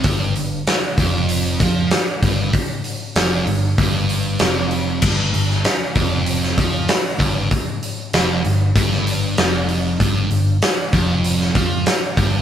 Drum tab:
CC |----------------|----------------|x---------------|----------------|
HH |o-o-o-o-o-o-o-o-|o-o-o-o-o-o-o-o-|--o-o-o-o-o-o-o-|o-o-o-o-o-o-o-o-|
SD |----o-------o---|----o-------o---|---oo----o--o---|----o----o--o---|
BD |o-----o---o---o-|o-------o-------|o-----o---o---o-|o-------o-------|

CC |----------------|
HH |o-o-o-o-o-o-o-o-|
SD |----o----o--o---|
BD |o-----o---o---o-|